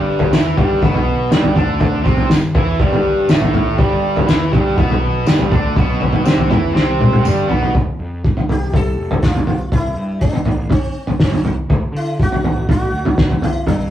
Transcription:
Already playing: G1 G2 G3
0.19 floor tom
0.31 E2 E3 E4, snare, tambourine
0.57 G1 G2 G3, kick, floor tom
0.81 B1 B2 B3, kick, floor tom
0.94 floor tom
1.29 G1 G2 G3, snare, tambourine
1.43 floor tom
1.54 D2 D3 D4, kick, floor tom
1.80 kick, floor tom
2.03 C2 C3 C4, kick
2.17 floor tom
2.28 G1 G2, snare, tambourine
2.54 E2 E3 E4, kick, floor tom
2.79 G1 G2 G3, kick, floor tom
2.93 floor tom
3.27 A1 A2 A3, snare, tambourine
3.41 floor tom
3.54 floor tom
3.77 G1 G2 G3, kick, floor tom
4.16 floor tom
4.26 E2 E3 E4, snare, tambourine
4.51 G1 G2 G3, kick, floor tom
4.75 B1 B2 B3, kick, floor tom
4.90 floor tom
5.24 G1 G2 G3, snare, tambourine
5.39 floor tom
5.51 D2 D3 D4, kick, floor tom
5.76 B1 B2 B3, kick, floor tom
6.01 floor tom
6.13 floor tom
6.24 C2 C3 C4, snare, tambourine
6.38 floor tom
6.49 E2 E3 E4, kick, floor tom, mid tom
6.74 C2 C3 C4, snare
7.01 high tom
7.13 high tom
7.23 G1 G2 G3, mid tom, tambourine
7.46 B1 B2 B3, floor tom
7.63 floor tom
7.75 F1, kick, floor tom
7.99 F2
8.25 kick
8.37 floor tom
8.48 C2 G4, floor tom
8.73 A4, kick, floor tom
8.97 F1
9.09 F1, floor tom
9.22 F4, kick, snare
9.36 floor tom
9.46 C2, floor tom
9.72 C2 E4, kick, floor tom
9.94 G2
10.21 D4, kick
10.33 floor tom
10.44 A1, floor tom
10.70 C4, kick, floor tom
11.07 floor tom
11.20 C4, kick, snare
11.30 G2, floor tom
11.43 C2, floor tom
11.69 D2, kick, floor tom
11.92 D3
11.96 E4
12.20 F#4, kick
12.32 floor tom
12.42 A1, floor tom
12.69 F#4, kick, floor tom
12.90 D2
13.02 D2, floor tom
13.18 kick, snare
13.30 floor tom
13.40 G1 E4, floor tom
13.66 G2 D4, kick, floor tom

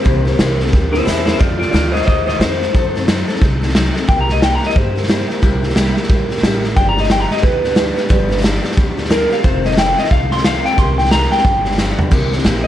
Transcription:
Already playing: C5
0.04 C2 C3 E3 A#3 C4 G4, kick, snare
0.25 A#3 C4 G4, snare
0.39 C2 C3 E3 A#3 C4 G4, snare, hi-hat pedal
0.60 A#3 C4 G4, snare
0.67 snare
0.72 D2 E3 A#3 C4 G4, kick, snare
0.92 A#3 C4 E4 G4 C5, snare
1.05 E2 C3 E3 A#3 C4 E4 G4 C5, snare, hi-hat pedal
1.26 C4 E4 G4 C5, snare
1.30 A#3
1.38 F2 C3 D#3 A3 D#4 F4 D5, kick, snare
1.58 D#4 F4 D5, snare
1.62 D#3 A3
1.71 D2 F2 C3 D#3 A3 D#4 F4 D5, snare, hi-hat pedal
1.92 A3 D#4 F4 C5 D#5, snare
1.97 D#3
2.02 C5, snare
2.06 D#2 D#3 A3 D#4 F4 D#5, kick, snare
2.26 D#3 A3 D#4 F4 C5 D#5, snare
2.40 F2 C3 D#3 A3 D#4 F4 C5, snare, hi-hat pedal
2.61 D#3 A3 D#4 F4, snare
2.74 F#2 F#3 C4 D#4 A4, kick, snare
2.95 C4 D#4 A4, snare
3.08 F#3 C4 D#4 A4, snare, hi-hat pedal
3.28 C4 D#4 A4, snare
3.36 snare
3.41 C2 F#3 C4 D#4 A4, kick, snare
3.62 C4 D#4 A4, snare
3.69 snare
3.75 F#3 C4 D#4 A4, snare, hi-hat pedal
3.95 C4 D#4 A4, snare
4.07 C2 C3 G3 A#3 E4 G4 G5, kick, snare
4.21 A#5
4.29 A#3 E4 G4 D#5, snare
4.42 C3 G3 A#3 E4 G4 G5, snare, hi-hat pedal
4.55 A#5
4.63 A#3 E4 G4 D#5, snare
4.70 snare
4.75 G2 G3 A#3 E4 G4 C5, kick, snare
4.96 A#3 E4 G4, snare
5.03 snare
5.08 C3 G3 A#3 E4 G4, snare, hi-hat pedal
5.28 A#3 E4 G4, snare
5.42 C2 C3 G3 A#3 E4 G4, kick, snare
5.63 A#3 E4 G4, snare
5.70 snare
5.76 C3 G3 A#3 E4 G4, snare, hi-hat pedal
5.96 A#3 E4 G4, snare
6.03 snare
6.09 A#1 G3 A#3 E4 G4, kick, snare
6.30 A#3 E4 G4, snare
6.37 snare
6.42 A1 C3 G3 A#3 E4 G4, snare, hi-hat pedal
6.63 A#3 E4 G4, snare
6.76 G1 G2 D3 F3 B3 D4 G4 G5, kick, snare
6.89 A#5
6.97 F3 B3 D4 G4 D#5, snare
7.04 snare
7.10 G2 D3 F3 B3 D4 G4 G5, snare, hi-hat pedal
7.20 A#5
7.31 F3 B3 D4 G4 D#5, snare
7.37 snare
7.42 D2 F3 B3 D4 G4 B4, kick, snare
7.64 F3 B3 D4 G4, snare
7.75 G2 D3 F3 B3 D4 G4, snare, hi-hat pedal
7.96 F3 B3 D4 G4, snare
8.09 G1 G2 D3 F3 B3 D4 G4, kick, snare
8.29 F3 B3 D4 G4, snare
8.38 G2, snare
8.42 D3 F3 B3 D4 G4, snare, hi-hat pedal
8.62 F3 B3 D4 G4, snare
8.72 snare
8.76 D2 F3 B3 D4 G4, kick, snare
8.97 F3 B3 D4 G4, snare
9.05 snare
9.10 G2 D3 F3 B3 D4 G4 A#4, snare, hi-hat pedal
9.30 F3 B3 D4 G4 F5, snare
9.43 F1 F2 C3 D#3 A3 C4 F4 C5, kick, snare
9.64 D#3 A3 C4 F4 D#5, snare
9.71 snare
9.77 F2 C3 D#3 A3 C4 F4 G5, snare, hi-hat pedal
9.98 D#3 A3 C4 F4 D#5, snare
10.04 snare
10.10 C2 D#3 A3 C4 F4 F5, kick, snare
10.31 D#3 A3 C4 F4 C6, snare
10.38 snare
10.44 F2 C3 D#3 A3 C4 F4 F5, snare, hi-hat pedal
10.65 D#3 A3 C4 F4 G5, snare
10.78 C2 C3 E3 A#3 C4 G4 C6, kick, snare
10.98 A#3 C4 G4 G5, snare
11.05 snare
11.11 C3 E3 A#3 C4 G4 A#5, snare, hi-hat pedal
11.32 A#3 C4 G4 G5, snare
11.38 snare
11.44 G1 F3 B3 D4, kick, snare
11.48 G4
11.65 F3 B3 D4 G4, snare
11.72 snare
11.78 G2 D3 F3 B3 D4 G4, snare, hi-hat pedal
11.99 F3 B3 D4 G4, floor tom
12.11 C2 C3 E3 A#3 C4 G4, kick, snare, crash
12.31 A#3 C4 G4, snare
12.38 snare
12.44 A#1 C3 E3 A#3 C4 G4, snare, hi-hat pedal
12.64 D#5

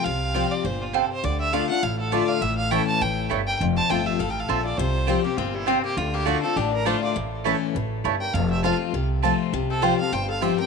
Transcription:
0.04 C2 C3 F5
0.34 F3 G3 C4 F4 G4 C5 G5
0.51 D5
0.64 G1 A#2 C5
0.82 F4
0.93 C3 C4 F4 A4 C5 G5
1.12 C5
1.24 D2 D3 D5
1.40 E5
1.53 D3 A3 D4 F4 D5 F5 A5
1.69 D4 F4 F#5
1.83 A1 A2 F5
2.00 A4
2.12 D3 A3 D4 F4 D5 A5
2.28 F5
2.41 A1 A2 E5
2.57 F5
2.71 E3 A3 C#4 E4 C#5 G5 A5
2.87 A5
3.01 A1 A2 C#5 G5
3.29 G1 G2 A3 E4 C#5 A5
3.47 A#4 G5
3.60 F1 F2
3.76 C5 A5
3.89 G1 F3 A3 C4 F4 C5 G5 A5
4.06 G4 E5
4.19 A1 A2 A4 F5
4.29 A#4 G5
4.39 A4 F5
4.48 A#1 A#2 C4 F4 A4 C5 E5 A5
4.65 F4 D5
4.77 C2 C3 F4 C5
5.07 F3 G3 C4 F4 G4 C5 G5
5.24 A#3 C4 G4
5.37 G1 A#2 C4 F4
5.54 G3 E4
5.66 C3 C4 F4 C5 G5
5.83 A#3 G4
5.97 D2 D3 A3 F4
6.13 A#3 G4
6.25 D3 A3 D4 F4 F#4 D5 A5
6.42 C4 D4 F4 A4
6.56 A1 A2 D4 G4
6.73 D4 A#4
6.85 D3 A3 D4 F4 C5 D5 A5
7.03 F4 D5
7.16 A1 A2
7.44 E3 A3 C#4 E4 C#5 A5
7.75 A1 A2
8.04 G1 G2 A3 E4 C#5 A5
8.21 A#4 G5
8.34 F1 F2 A4 F5
8.50 G4 E5
8.63 F3 A3 C4 F4 A4 C5 F5 A5
8.93 C2 C3
9.22 F3 A3 C4 F4 C5 A5
9.53 C2 C3
9.70 C4 A4
9.82 F3 G3 C4 F4 G4 C5 G5
9.99 C4 G4 A4 F5
10.12 G1 G2 C5 G5
10.29 A4 F5
10.41 F3 G3 C4 F4 G4 C5 E5 G5
10.58 C4 G4 A#4 G5

